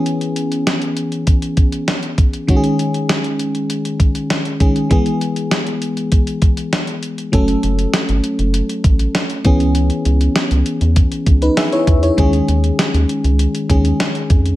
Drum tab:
HH |xxxxxxxxxxxxxxxx|xxxxxxxxxxxxxxxx|xxxxxxxxxxxxxxxx|xxxxxxxxxxxxxxxx|
SD |----o-------o---|----o-------o---|----o-------o---|----o-------o---|
BD |--------o-o---o-|o---------o---o-|o-------o-o-----|o---------o---o-|

HH |xxxxxxxxxxxxxxxx|xxxxxxxxxxxxxxxx|
SD |----o-------o---|----o-------o---|
BD |--------o-o---o-|o---------o---o-|